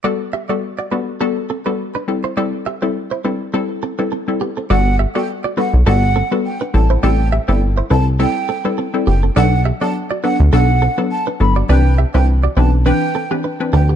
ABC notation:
X:1
M:4/4
L:1/16
Q:"Swing 16ths" 1/4=103
K:G
V:1 name="Flute"
z16 | z16 | f2 z g z2 f z f3 z g z a z | g2 z g z2 a z g3 z3 g z |
f2 z a z2 f z f3 z a z b z | g2 z g z2 a z g3 z3 g z |]
V:2 name="Clean electric guitar"
[Fd] z [Ge] [Fd] z [Fd] [DB] z [DA] z [CA] [DB] z [DB] z [Ec] | [Gd] z [Ge] [Ec] z [Ec] [DB] z [CA] z [CA] [DB] [CA] z [B,G] [CA] | [Fd] z [Ge] [Fd] z [Fd] [DB] z [DA] z [CA] [DB] z [DB] z [Ec] | [Gd] z [Ge] [Ec] z [Ec] [DB] z [CA] z [CA] [DB] [CA] z [B,G] [CA] |
[Fd] z [Ge] [Fd] z [Fd] [DB] z [DA] z [CA] [DB] z [DB] z [Fd] | [Gd] z [Ge] [Ec] z [Fd] [Ec] z [DB] z [CA] [B,G] [DB] z [CA] [B,G] |]
V:3 name="Synth pluck"
[G,B,FA] z2 [G,B,FA] z2 [G,B,FA] z [G,B,FA] z2 [G,B,FA] z2 [G,CEA] z | [G,CEA] z2 [G,CEA] z2 [G,CEA] z [G,CEA]3 [G,CEA] z [G,CEA] z2 | [G,B,FA] z2 [G,B,FA] z2 [G,B,FA] z [G,B,FA] z2 [G,B,FA] z2 [G,CEA] z | [G,CEA] z2 [G,CEA] z2 [G,CEA] z [G,CEA]3 [G,CEA] z [G,CEA] z2 |
[F,B,DA] z2 [F,B,DA] z2 [F,B,DA] z [F,B,DA] z2 [F,B,DA] z2 [F,B,DA] z | [E,CDB] z2 [E,CDB] z2 [E,CDB] z [E,CDB]3 [E,CDB] z [E,CDB] z2 |]
V:4 name="Analog synth bass" clef=bass
z16 | z16 | G,,,3 z4 B,,, G,,,3 z3 A,,,2 | A,,,3 G,,,3 C,,3 z4 z F,,,2 |
B,,,3 z4 D,, B,,,3 z3 G,,,2 | C,,3 C,,3 B,,,3 z4 z D,,2 |]